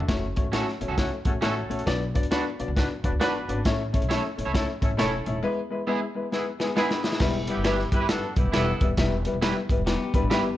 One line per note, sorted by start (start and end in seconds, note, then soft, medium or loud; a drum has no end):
0.00 floor tom medium
0.08 0.35 F#1 medium
0.08 0.23 A3 loud
0.08 0.24 C#4 loud
0.08 0.24 F#4 loud
0.08 0.24 C#5 loud
0.08 kick loud
0.08 snare loud
0.08 closed hi-hat medium
0.36 0.45 A3 medium
0.36 0.45 C#4 medium
0.36 0.45 F#4 medium
0.36 0.46 C#5 medium
0.36 kick loud
0.36 closed hi-hat medium
0.44 0.61 A1 medium
0.52 0.68 A3 medium
0.52 0.64 C#4 medium
0.52 0.68 C#4 medium
0.52 0.65 F#4 loud
0.52 0.68 F#4 medium
0.52 0.65 A4 medium
0.52 0.69 C#5 loud
0.52 snare loud
0.52 closed hi-hat loud
0.68 snare soft
0.80 0.87 A1 medium
0.80 0.90 A3 medium
0.80 0.90 C#4 medium
0.80 0.90 F#4 medium
0.80 0.90 C#5 medium
0.80 closed hi-hat medium
0.88 1.05 C#2 medium
0.88 0.95 C#4 medium
0.88 0.95 F#4 medium
0.88 0.94 A4 medium
0.97 1.12 A3 medium
0.97 1.09 C#4 medium
0.97 1.13 C#4 medium
0.97 1.10 F#4 medium
0.97 1.13 F#4 medium
0.97 1.10 A4 medium
0.97 1.13 C#5 medium
0.97 kick medium
0.97 snare loud
0.97 closed hi-hat medium
1.25 1.32 A1 medium
1.25 1.35 A3 medium
1.25 1.33 C#4 medium
1.25 1.35 C#4 medium
1.25 1.33 F#4 medium
1.25 1.35 F#4 medium
1.25 1.33 A4 medium
1.25 1.35 C#5 medium
1.25 kick loud
1.25 closed hi-hat medium
1.33 1.39 A1 medium
1.41 1.63 A1 medium
1.41 1.57 A3 loud
1.41 1.53 C#4 medium
1.41 1.85 C#4 medium
1.41 1.57 C#4 medium
1.41 1.54 F#4 medium
1.41 1.85 F#4 medium
1.41 1.57 F#4 medium
1.41 1.54 A4 medium
1.41 1.85 A4 loud
1.41 1.58 C#5 loud
1.41 snare loud
1.41 closed hi-hat medium
1.69 1.82 A#1 medium
1.69 1.79 A3 medium
1.69 1.79 C#4 medium
1.69 1.79 F#4 medium
1.69 1.79 C#5 loud
1.69 closed hi-hat medium
1.79 closed hi-hat soft
1.86 2.14 B1 medium
1.86 2.01 B3 loud
1.86 2.02 D4 medium
1.86 2.02 F#4 medium
1.86 2.02 D5 loud
1.86 kick loud
1.86 snare loud
1.86 closed hi-hat medium
2.14 2.23 B3 medium
2.14 2.24 D4 medium
2.14 2.24 F#4 medium
2.14 2.24 D5 medium
2.14 kick medium
2.14 closed hi-hat medium
2.23 2.39 D2 medium
2.23 closed hi-hat medium
2.31 2.46 B3 loud
2.31 2.43 D4 medium
2.31 2.46 D4 loud
2.31 2.46 F#4 medium
2.31 2.43 F#4 medium
2.31 2.43 B4 medium
2.31 2.47 D5 loud
2.31 snare loud
2.31 closed hi-hat loud
2.59 2.66 B1 medium
2.59 2.68 B3 medium
2.59 2.68 D4 medium
2.59 2.68 F#4 medium
2.59 2.69 D5 medium
2.59 closed hi-hat medium
2.68 2.84 C#2 medium
2.76 2.91 B3 medium
2.76 2.88 D4 medium
2.76 2.91 D4 medium
2.76 2.88 F#4 medium
2.76 2.91 F#4 medium
2.76 2.88 B4 medium
2.76 2.91 D5 medium
2.76 kick medium
2.76 snare medium
2.76 closed hi-hat medium
3.03 3.10 D2 medium
3.03 3.13 B3 medium
3.03 3.11 D4 medium
3.03 3.13 D4 medium
3.03 3.11 F#4 medium
3.03 3.13 F#4 medium
3.03 3.11 B4 medium
3.03 3.13 D5 medium
3.03 kick medium
3.03 closed hi-hat medium
3.12 3.18 D2 medium
3.20 3.41 G1 medium
3.20 3.35 B3 loud
3.20 3.32 D4 medium
3.20 3.63 D4 medium
3.20 3.35 D4 medium
3.20 3.63 F#4 medium
3.20 3.32 F#4 medium
3.20 3.36 F#4 medium
3.20 3.63 B4 loud
3.20 3.32 B4 medium
3.20 3.36 D5 loud
3.20 snare loud
3.20 closed hi-hat medium
3.48 3.61 G#1 medium
3.48 3.57 B3 medium
3.48 3.58 D4 medium
3.48 3.58 F#4 medium
3.48 3.58 D5 medium
3.48 closed hi-hat medium
3.65 3.92 A1 loud
3.65 3.80 A3 loud
3.65 3.80 C#4 loud
3.65 3.80 E4 loud
3.65 3.81 C#5 loud
3.65 kick loud
3.65 snare loud
3.65 closed hi-hat medium
3.93 4.02 A3 medium
3.93 4.02 C#4 medium
3.93 4.02 E4 medium
3.93 4.02 C#5 medium
3.93 kick medium
3.93 closed hi-hat medium
4.01 4.17 B1 medium
4.01 closed hi-hat soft
4.09 4.24 A3 loud
4.09 4.25 C#4 loud
4.09 4.21 E4 medium
4.09 4.25 E4 medium
4.09 4.21 A4 medium
4.09 4.21 C#5 loud
4.09 4.25 C#5 loud
4.09 snare loud
4.09 closed hi-hat medium
4.37 4.44 A1 medium
4.37 4.46 A3 medium
4.37 4.46 C#4 medium
4.37 4.47 E4 medium
4.37 4.47 C#5 medium
4.37 closed hi-hat medium
4.45 4.63 C#2 medium
4.45 4.51 E4 medium
4.45 4.51 A4 medium
4.45 4.51 C#5 medium
4.53 4.68 A3 medium
4.53 4.69 C#4 medium
4.53 4.66 C#4 medium
4.53 4.69 E4 medium
4.53 4.66 E4 medium
4.53 4.66 A4 medium
4.53 4.69 C#5 loud
4.53 kick medium
4.53 snare loud
4.53 closed hi-hat medium
4.81 4.88 A1 medium
4.81 4.90 A3 medium
4.81 4.90 C#4 medium
4.81 4.89 C#4 medium
4.81 4.91 E4 medium
4.81 4.89 E4 medium
4.81 4.89 A4 medium
4.81 4.91 C#5 medium
4.81 kick loud
4.81 closed hi-hat medium
4.91 4.97 A1 medium
4.97 5.19 E1 medium
4.97 5.13 A3 loud
4.97 5.13 C#4 loud
4.97 5.41 C#4 medium
4.97 5.10 E4 medium
4.97 5.13 E4 loud
4.97 5.41 E4 medium
4.97 5.41 A4 medium
4.97 5.10 A4 medium
4.97 5.13 C#5 loud
4.97 5.11 C#5 medium
4.97 snare loud
4.97 closed hi-hat medium
5.26 5.39 D#1 loud
5.26 5.35 A3 medium
5.26 5.35 C#4 medium
5.26 5.35 E4 medium
5.26 5.36 C#5 medium
5.26 closed hi-hat medium
5.43 5.58 G#3 loud
5.43 5.58 B3 loud
5.43 5.58 E4 loud
5.43 5.58 B4 loud
5.70 5.79 G#3 medium
5.70 5.80 B3 medium
5.70 5.80 E4 medium
5.70 5.80 B4 loud
5.87 6.02 G#3 loud
5.87 5.99 B3 medium
5.87 6.02 B3 loud
5.87 5.99 E4 loud
5.87 6.02 E4 loud
5.87 5.99 G#4 loud
5.87 6.03 B4 loud
6.15 6.24 G#3 medium
6.15 6.24 B3 medium
6.15 6.24 E4 medium
6.15 6.25 B4 medium
6.32 6.47 G#3 medium
6.32 6.47 B3 medium
6.32 6.44 B3 medium
6.32 6.44 E4 medium
6.32 6.47 E4 medium
6.32 6.44 G#4 medium
6.32 6.47 B4 medium
6.32 snare medium
6.59 6.68 G#3 medium
6.59 6.68 B3 medium
6.59 6.75 B3 medium
6.59 6.68 B3 medium
6.59 6.69 E4 medium
6.59 6.68 E4 medium
6.59 6.75 G#4 medium
6.59 6.68 G#4 medium
6.59 6.69 B4 medium
6.59 snare medium
6.76 6.91 G#3 loud
6.76 6.88 B3 medium
6.76 6.91 B3 loud
6.76 7.19 B3 loud
6.76 7.03 D4 medium
6.76 6.91 E4 loud
6.76 6.88 E4 medium
6.76 7.19 E4 medium
6.76 6.88 G#4 medium
6.76 7.19 G#4 loud
6.76 7.03 B4 medium
6.76 6.91 B4 loud
6.76 snare medium
6.91 snare medium
7.03 7.13 G#3 medium
7.03 7.47 G#3 medium
7.03 7.13 B3 medium
7.03 7.46 E4 medium
7.03 7.13 E4 medium
7.03 7.13 B4 medium
7.03 snare loud
7.12 snare medium
7.20 7.47 E1 loud
7.20 7.35 G3 loud
7.20 7.35 B3 loud
7.20 7.36 E4 loud
7.20 7.36 B4 loud
7.20 kick loud
7.20 snare loud
7.20 crash loud
7.47 7.57 G3 medium
7.47 7.57 B3 medium
7.47 7.62 B3 medium
7.47 7.57 E4 medium
7.47 7.62 E4 medium
7.47 7.62 G4 loud
7.47 7.57 B4 loud
7.47 closed hi-hat medium
7.57 7.83 G1 medium
7.64 7.79 G3 loud
7.64 7.80 B3 medium
7.64 7.76 E4 medium
7.64 7.80 E4 loud
7.64 7.87 E4 medium
7.64 7.76 G4 medium
7.64 7.87 G4 medium
7.64 7.87 B4 medium
7.64 7.80 B4 loud
7.64 7.77 B4 medium
7.64 snare loud
7.64 closed hi-hat loud
7.79 snare soft
7.92 8.15 G1 medium
7.92 8.01 G3 medium
7.92 8.02 B3 medium
7.92 8.06 E4 loud
7.92 8.02 E4 medium
7.92 8.06 G4 medium
7.92 8.06 B4 loud
7.92 8.02 B4 medium
7.92 kick medium
7.92 closed hi-hat medium
8.00 8.07 E4 medium
8.00 8.06 G4 medium
8.00 8.06 B4 medium
8.09 8.24 G3 medium
8.09 8.24 B3 medium
8.09 8.31 D4 medium
8.09 8.24 E4 medium
8.09 8.31 F#4 medium
8.09 8.31 A4 loud
8.09 8.24 B4 medium
8.09 snare loud
8.09 closed hi-hat medium
8.36 8.43 B1 medium
8.36 8.46 G3 medium
8.36 8.50 B3 medium
8.36 8.46 B3 medium
8.36 8.50 E4 medium
8.36 8.46 E4 medium
8.36 8.50 G4 medium
8.36 8.46 B4 medium
8.36 kick loud
8.36 closed hi-hat medium
8.45 8.51 G1 medium
8.52 8.74 E1 loud
8.52 8.68 G3 loud
8.52 8.87 B3 medium
8.52 8.68 B3 loud
8.52 8.65 E4 medium
8.52 8.87 E4 medium
8.52 8.69 E4 loud
8.52 8.65 G4 medium
8.52 8.87 A4 loud
8.52 8.65 B4 medium
8.52 8.69 B4 loud
8.52 snare loud
8.52 closed hi-hat medium
8.81 8.93 D#1 medium
8.81 8.90 G3 medium
8.81 8.90 B3 medium
8.81 8.90 E4 medium
8.81 8.91 B4 medium
8.81 kick loud
8.81 closed hi-hat medium
8.97 9.24 E1 loud
8.97 9.13 G3 loud
8.97 9.13 B3 loud
8.97 9.13 E4 loud
8.97 9.13 B4 loud
8.97 kick loud
8.97 snare loud
8.97 closed hi-hat medium
9.25 9.34 G3 medium
9.25 9.35 B3 medium
9.25 9.35 E4 medium
9.25 9.35 B4 medium
9.25 closed hi-hat medium
9.33 9.50 E1 medium
9.41 9.57 G3 loud
9.41 9.57 B3 loud
9.41 9.53 E4 medium
9.41 9.57 E4 loud
9.41 9.54 G4 medium
9.41 9.54 B4 loud
9.41 9.57 B4 loud
9.41 snare loud
9.41 closed hi-hat loud
9.69 9.76 G1 medium
9.69 9.79 G3 medium
9.69 9.79 B3 medium
9.69 9.79 E4 medium
9.69 9.80 B4 medium
9.69 kick medium
9.69 closed hi-hat medium
9.77 9.94 E1 medium
9.86 10.01 G3 medium
9.86 10.01 B3 medium
9.86 10.13 B3 medium
9.86 10.01 E4 medium
9.86 10.13 G4 medium
9.86 10.02 B4 medium
9.86 snare loud
9.86 closed hi-hat medium
10.14 10.20 G1 medium
10.14 10.23 G3 medium
10.14 10.23 B3 medium
10.14 10.30 D4 medium
10.14 10.23 E4 medium
10.14 10.30 B4 medium
10.14 10.23 B4 loud
10.14 kick medium
10.14 closed hi-hat medium
10.22 10.28 A1 medium
10.30 10.51 G1 medium
10.30 10.45 G3 loud
10.30 10.46 B3 loud
10.30 10.57 B3 medium
10.30 10.42 E4 medium
10.30 10.46 E4 loud
10.30 10.42 G4 medium
10.30 10.57 G4 medium
10.30 10.42 B4 medium
10.30 10.46 B4 loud
10.30 snare loud
10.30 closed hi-hat medium